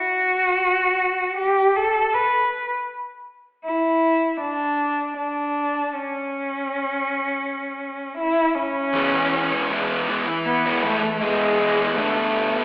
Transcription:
Already playing: cello F#4
1.37 cello G4
1.76 cello A4
2.14 cello B4
3.64 cello E4
4.41 cello D4
5.17 cello D4
5.94 cello C#4
8.18 cello E4
8.55 cello C#4
8.94 distorted electric guitar E3 G#3 B3 E4
9.13 distorted electric guitar G#3 B3 E4
9.70 distorted electric guitar E3 G#3 B3 E4
10.08 distorted electric guitar E3 G#3 B3 E4
10.27 muted distorted electric guitar stroke
10.46 cello B3
10.66 distorted electric guitar G#3 B3 E4
10.83 distorted electric guitar E3 G#3 B3 E4, cello A3
11.03 muted distorted electric guitar stroke
11.21 distorted electric guitar E3 G#3 B3 E4, cello G#3
11.59 distorted electric guitar E3 G#3 B3 E4
11.78 distorted electric guitar G#3 B3 E4
11.94 distorted electric guitar G2 D3, cello A3
11.99 distorted electric guitar G3 B3 D4
12.17 distorted electric guitar G3 B3 D4

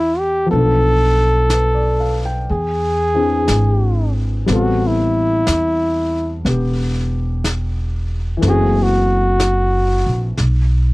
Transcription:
Already playing: upright bass E2, grand piano G3 B3 C4 A4, trumpet E4
0.19 trumpet G4
0.46 grand piano F3 B3
0.51 upright bass B1, grand piano D4, trumpet A4, brush sweep
0.56 grand piano A4
1.50 grand piano B4, brush sweep, snare, hi-hat pedal
1.75 grand piano D5
2.00 grand piano F5
2.25 grand piano G5
2.48 upright bass E2, trumpet G#4, brush sweep
3.14 grand piano E3 C4 D4 G#4
3.48 upright bass G#1, brush sweep, snare, hi-hat pedal
4.46 upright bass A1, grand piano G3 B3 C4, brush sweep, snare
4.52 trumpet F#4, grand piano A4
4.87 trumpet E4
5.47 upright bass E2, brush sweep, snare, hi-hat pedal
6.45 upright bass E1, grand piano B3 G4, brush sweep, snare
7.44 brush sweep, snare, hi-hat pedal
8.37 grand piano E3
8.41 upright bass F#1, grand piano A3 C4, brush sweep, snare
8.48 grand piano F#4, trumpet G#4
8.83 trumpet F#4
9.40 brush sweep, snare, hi-hat pedal
10.06 upright bass A#1
10.37 upright bass B1, brush sweep, snare

